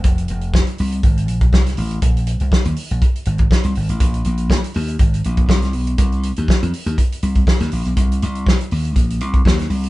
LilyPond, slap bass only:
\new Staff \with { instrumentName = "Slap bass" } { \clef bass \time 4/4 \key c \minor \tempo 4 = 121 f,,8 f,,8. r16 c,8 aes,,8 bes,,8 c,8 a,,8 | bes,,8. c,16 r16 ees,16 r16 bes,,16 r8 aes,,8 r16 c,16 aes,,16 a,,16 | bes,,8 bes,,8. r16 ees,8 aes,,8 bes,,8 c,8 b,,8 | c,8. ees,16 r16 f,16 r16 ees,16 r8 c,8 r16 ees,16 bes,,16 b,,16 |
c,8 c,8. r16 ees,8 bes,,8 c,8 ees,8 c,8 | }